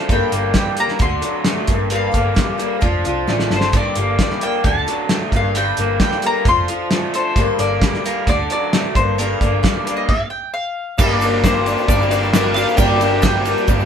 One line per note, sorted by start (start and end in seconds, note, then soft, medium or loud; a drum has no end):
0.00 0.11 A3 medium
0.00 0.10 D4 soft
0.00 0.10 F4 soft
0.00 0.11 A4 medium
0.00 0.11 F5 medium
0.09 0.19 G1 medium
0.09 0.33 G2 medium
0.09 0.33 D3 medium
0.09 0.33 G3 medium
0.09 0.33 A#3 medium
0.09 0.32 G4 medium
0.09 0.32 A4 medium
0.09 0.55 G5 medium
0.09 kick medium
0.09 closed hi-hat medium
0.32 0.51 G1 medium
0.32 0.53 G3 soft
0.32 0.55 A#3 medium
0.32 0.55 G4 medium
0.32 0.56 A4 medium
0.32 closed hi-hat medium
0.54 0.78 G3 medium
0.54 0.77 A#3 medium
0.54 0.77 G4 medium
0.54 0.75 A4 medium
0.54 0.79 G5 medium
0.54 kick medium
0.54 snare loud
0.54 closed hi-hat medium
0.77 1.01 G3 soft
0.77 1.01 A#3 soft
0.77 1.01 G4 soft
0.77 1.00 A4 soft
0.77 1.01 A#5 loud
0.77 closed hi-hat medium
0.88 snare soft
0.99 1.20 D2 medium
0.99 1.24 D3 medium
0.99 1.24 A3 medium
0.99 1.22 D4 medium
0.99 1.22 F#4 medium
0.99 1.20 A4 medium
0.99 1.95 C6 medium
0.99 kick loud
0.99 closed hi-hat medium
1.21 1.68 F#3 medium
1.21 1.45 D4 soft
1.21 1.46 F#4 soft
1.21 1.45 A4 medium
1.21 closed hi-hat medium
1.45 1.69 A3 medium
1.45 1.69 D4 medium
1.45 1.69 F#4 medium
1.45 1.67 A4 medium
1.45 snare loud
1.45 closed hi-hat medium
1.67 2.07 G1 medium
1.67 1.89 G2 medium
1.67 1.90 G3 soft
1.67 1.90 A#3 medium
1.67 1.90 G4 medium
1.67 1.91 A4 medium
1.67 kick medium
1.67 closed hi-hat medium
1.90 2.14 G2 medium
1.90 2.14 D3 medium
1.90 2.13 G3 medium
1.90 2.12 A#3 medium
1.90 2.11 G4 medium
1.90 2.10 A4 medium
1.90 closed hi-hat medium
1.96 2.58 F5 medium
2.11 2.33 G1 medium
2.11 2.33 G3 soft
2.11 2.34 A#3 soft
2.11 2.36 G4 soft
2.11 2.36 A4 medium
2.11 kick medium
2.11 closed hi-hat medium
2.34 2.59 G3 soft
2.34 2.59 A#3 medium
2.34 2.57 G4 medium
2.34 2.57 A4 medium
2.34 kick medium
2.34 snare medium
2.34 closed hi-hat medium
2.58 2.80 G3 soft
2.58 2.81 A#3 soft
2.58 2.81 G4 medium
2.58 2.81 A4 medium
2.58 closed hi-hat soft
2.81 3.01 F1 medium
2.81 3.05 F3 medium
2.81 3.05 D4 medium
2.81 3.04 F4 medium
2.81 3.03 A4 medium
2.81 kick medium
2.81 closed hi-hat medium
3.04 3.27 C2 medium
3.04 3.75 F3 medium
3.04 3.27 D4 medium
3.04 3.28 F4 medium
3.04 3.28 A4 medium
3.04 closed hi-hat medium
3.27 3.49 A1 medium
3.27 3.51 F3 medium
3.27 3.77 A3 medium
3.27 3.51 D4 medium
3.27 3.51 F4 medium
3.27 3.50 A4 medium
3.27 snare medium
3.39 snare medium
3.50 3.72 G1 medium
3.50 3.73 D4 soft
3.50 3.73 F4 soft
3.50 3.73 A4 medium
3.50 snare medium
3.56 3.76 C5 medium
3.61 snare medium
3.72 3.83 G1 medium
3.72 3.96 G2 medium
3.72 3.97 D3 medium
3.72 3.97 G3 medium
3.72 3.96 A#3 medium
3.72 3.96 G4 medium
3.72 3.96 A4 medium
3.72 kick medium
3.72 closed hi-hat medium
3.72 splash medium
3.77 4.21 D5 medium
3.95 4.16 G1 loud
3.95 4.18 G3 soft
3.95 4.19 A#3 medium
3.95 4.19 G4 medium
3.95 4.19 A4 medium
3.95 closed hi-hat medium
4.19 4.42 G3 medium
4.19 4.42 A#3 medium
4.19 4.42 G4 medium
4.19 4.42 A4 medium
4.19 4.44 D5 medium
4.19 kick medium
4.19 snare loud
4.19 closed hi-hat medium
4.30 snare soft
4.41 4.66 G3 soft
4.41 4.65 A#3 soft
4.41 4.65 G4 soft
4.41 4.65 A4 soft
4.41 4.64 G5 medium
4.41 closed hi-hat medium
4.64 4.84 D2 medium
4.64 4.88 D3 medium
4.64 4.88 A3 medium
4.64 4.88 D4 medium
4.64 4.87 F#4 medium
4.64 4.85 A4 medium
4.64 5.29 A5 medium
4.64 kick loud
4.64 closed hi-hat medium
4.87 5.33 F#3 medium
4.87 5.10 D4 soft
4.87 5.10 F#4 soft
4.87 5.10 A4 medium
4.87 closed hi-hat medium
5.09 5.33 A3 medium
5.09 5.34 D4 medium
5.09 5.34 F#4 medium
5.09 5.32 A4 medium
5.09 snare loud
5.09 closed hi-hat medium
5.32 5.71 G1 medium
5.32 5.54 G2 medium
5.32 5.56 G3 soft
5.32 5.55 A#3 soft
5.32 5.56 G4 soft
5.32 5.56 A4 medium
5.32 kick medium
5.32 closed hi-hat medium
5.36 5.58 F5 medium
5.55 5.78 G2 medium
5.55 5.79 D3 medium
5.55 5.79 G3 medium
5.55 5.78 A#3 medium
5.55 5.77 G4 loud
5.55 5.76 A4 medium
5.55 6.00 G5 loud
5.55 closed hi-hat medium
5.77 5.97 G1 loud
5.77 5.99 G3 soft
5.77 6.00 A#3 soft
5.77 6.01 G4 soft
5.77 6.01 A4 soft
5.77 closed hi-hat medium
6.00 6.24 G3 medium
6.00 6.23 A#3 medium
6.00 6.23 G4 medium
6.00 6.22 A4 medium
6.00 6.25 G5 medium
6.00 kick medium
6.00 snare loud
6.00 closed hi-hat medium
6.12 snare soft
6.22 6.46 G3 soft
6.22 6.47 A#3 soft
6.22 6.47 G4 soft
6.22 6.46 A4 soft
6.22 closed hi-hat medium
6.26 6.48 A#5 loud
6.45 6.65 F1 medium
6.45 6.69 F3 medium
6.45 6.70 D4 medium
6.45 6.69 F4 medium
6.45 6.68 A4 medium
6.45 7.12 C6 loud
6.45 kick loud
6.45 closed hi-hat medium
6.68 7.37 F3 medium
6.68 6.90 D4 soft
6.68 6.91 F4 soft
6.68 6.92 A4 soft
6.68 closed hi-hat medium
6.91 7.14 F3 medium
6.91 7.38 A3 medium
6.91 7.14 D4 medium
6.91 7.14 F4 medium
6.91 7.14 A4 medium
6.91 snare loud
6.91 closed hi-hat medium
7.14 7.37 D4 soft
7.14 7.37 F4 soft
7.14 7.37 A4 soft
7.14 7.59 C5 medium
7.14 closed hi-hat medium
7.36 7.46 G1 medium
7.36 7.59 G2 medium
7.36 7.60 D3 medium
7.36 7.59 G3 medium
7.36 7.59 A#3 medium
7.36 7.58 G4 medium
7.36 7.57 A4 medium
7.36 kick medium
7.36 closed hi-hat medium
7.58 7.78 G1 loud
7.58 7.81 G3 soft
7.58 7.82 A#3 soft
7.58 7.82 G4 soft
7.58 7.82 A4 medium
7.58 8.02 D5 medium
7.58 closed hi-hat medium
7.82 8.05 G3 medium
7.82 8.04 A#3 medium
7.82 8.04 G4 medium
7.82 8.03 A4 medium
7.82 kick medium
7.82 snare loud
7.82 closed hi-hat medium
7.94 snare soft
8.04 8.28 G3 soft
8.04 8.27 A#3 soft
8.04 8.28 G4 soft
8.04 8.27 A4 soft
8.04 8.29 A#4 medium
8.04 closed hi-hat medium
8.27 8.46 D2 medium
8.27 8.50 D3 medium
8.27 8.51 A3 medium
8.27 8.51 D4 medium
8.27 8.51 F#4 medium
8.27 8.50 A4 medium
8.27 8.50 D5 medium
8.27 kick medium
8.27 closed hi-hat medium
8.50 8.96 F#3 medium
8.50 8.74 D4 soft
8.50 8.75 F#4 soft
8.50 8.74 A4 soft
8.50 8.95 D5 medium
8.50 closed hi-hat medium
8.73 8.97 A3 medium
8.73 8.97 D4 medium
8.73 8.97 F#4 medium
8.73 8.96 A4 medium
8.73 snare loud
8.73 closed hi-hat medium
8.95 9.34 G1 medium
8.95 9.19 G2 medium
8.95 9.18 D4 soft
8.95 9.18 A4 soft
8.95 9.17 C5 medium
8.95 kick medium
8.95 closed hi-hat medium
9.00 9.17 A#3 soft
9.18 10.10 G2 medium
9.18 9.41 G3 medium
9.18 9.41 A#3 medium
9.18 9.41 D4 medium
9.18 9.40 A4 medium
9.18 9.62 A#4 medium
9.18 closed hi-hat medium
9.41 9.60 G1 loud
9.41 9.64 A#3 soft
9.41 9.65 D4 medium
9.41 9.64 A4 medium
9.41 kick medium
9.41 closed hi-hat medium
9.63 9.87 G3 medium
9.63 9.87 A#3 medium
9.63 9.87 D4 medium
9.63 9.87 A4 medium
9.63 9.96 D5 medium
9.63 kick medium
9.63 snare loud
9.63 closed hi-hat medium
9.87 10.11 A#3 soft
9.87 10.10 D4 soft
9.87 10.10 A4 soft
9.87 closed hi-hat medium
9.97 10.09 D#5 medium
10.09 10.30 F5 medium
10.09 kick medium
10.09 crash medium
10.30 10.53 G5 medium
10.54 11.00 F5 medium
10.98 11.74 G1 medium
10.98 11.22 G2 medium
10.98 11.22 D3 medium
10.98 11.22 G3 medium
10.98 11.39 A#3 loud
10.98 11.22 A#3 loud
10.98 11.39 D4 medium
10.98 11.21 D4 loud
10.98 11.39 G4 medium
10.98 13.85 G4 medium
10.98 11.20 G4 medium
10.98 13.85 A#4 medium
10.98 11.40 A#4 loud
10.98 11.41 D5 medium
10.98 13.85 D5 medium
10.98 13.85 A#5 medium
10.98 kick loud
10.98 crash loud
10.98 shaker loud
11.21 11.43 G3 medium
11.21 11.45 A#3 medium
11.21 11.45 D4 medium
11.21 11.44 G4 medium
11.21 ride medium
11.21 shaker medium
11.43 12.78 G2 medium
11.43 12.34 D3 medium
11.43 11.67 G3 medium
11.43 11.84 A#3 medium
11.43 11.67 A#3 medium
11.43 11.84 D4 medium
11.43 11.66 D4 medium
11.43 11.84 G4 medium
11.43 11.66 G4 medium
11.43 11.85 A#4 medium
11.43 11.86 C5 medium
11.43 kick medium
11.43 snare loud
11.43 ride loud
11.43 shaker loud
11.66 11.89 G3 soft
11.66 11.89 A#3 medium
11.66 11.90 D4 medium
11.66 11.89 G4 medium
11.66 ride medium
11.66 shaker medium
11.78 shaker soft
11.88 12.64 G1 medium
11.88 12.12 G2 medium
11.88 12.12 D3 medium
11.88 12.12 G3 medium
11.88 12.29 A#3 medium
11.88 12.11 A#3 medium
11.88 12.29 D4 medium
11.88 12.10 D4 medium
11.88 12.29 G4 medium
11.88 12.09 G4 medium
11.88 12.30 A#4 medium
11.88 12.11 D5 medium
11.88 kick loud
11.88 ride medium
11.88 shaker loud
12.02 shaker soft
12.11 12.32 G3 soft
12.11 12.33 A#3 soft
12.11 12.34 D4 medium
12.11 12.34 G4 medium
12.11 12.54 D5 medium
12.11 ride medium
12.11 shaker medium
12.24 shaker soft
12.33 12.56 G3 medium
12.33 12.74 A#3 medium
12.33 12.56 A#3 medium
12.33 12.74 D4 medium
12.33 12.56 D4 medium
12.33 12.75 G4 medium
12.33 12.55 G4 medium
12.33 12.75 A#4 medium
12.33 snare loud
12.33 ride loud
12.33 shaker loud
12.54 12.77 G3 soft
12.54 12.79 A#3 soft
12.54 12.78 D4 medium
12.54 12.79 G4 soft
12.54 12.76 F5 medium
12.54 ride medium
12.54 shaker medium
12.68 shaker soft
12.76 13.54 G1 loud
12.76 13.01 G2 medium
12.76 13.01 D3 medium
12.76 13.01 G3 medium
12.76 13.17 A#3 loud
12.76 13.01 A#3 medium
12.76 13.18 D4 loud
12.76 13.01 D4 medium
12.76 13.19 G4 medium
12.76 13.00 G4 medium
12.76 13.19 A#4 loud
12.76 13.21 G5 loud
12.76 kick loud
12.76 ride loud
12.76 shaker loud
13.00 13.21 G3 soft
13.00 13.22 A#3 medium
13.00 13.23 D4 medium
13.00 13.23 G4 medium
13.00 ride medium
13.00 shaker medium
13.22 13.85 G2 medium
13.22 13.85 D3 medium
13.22 13.45 G3 medium
13.22 13.63 A#3 medium
13.22 13.46 A#3 medium
13.22 13.63 D4 medium
13.22 13.45 D4 medium
13.22 13.64 G4 medium
13.22 13.44 G4 medium
13.22 13.64 C5 medium
13.22 13.85 G5 medium
13.22 kick medium
13.22 snare loud
13.22 ride loud
13.22 shaker medium
13.45 13.67 G3 soft
13.45 13.68 A#3 soft
13.45 13.68 D4 medium
13.45 13.68 G4 medium
13.45 ride medium
13.45 shaker medium
13.58 shaker soft
13.67 13.85 G1 loud
13.67 13.85 G2 medium
13.67 13.85 D3 medium
13.67 13.85 G3 medium
13.67 13.85 A#3 medium
13.67 13.85 D4 medium
13.67 13.85 G4 medium
13.67 13.85 A#4 medium
13.67 kick loud
13.67 ride medium
13.67 shaker medium
13.80 shaker soft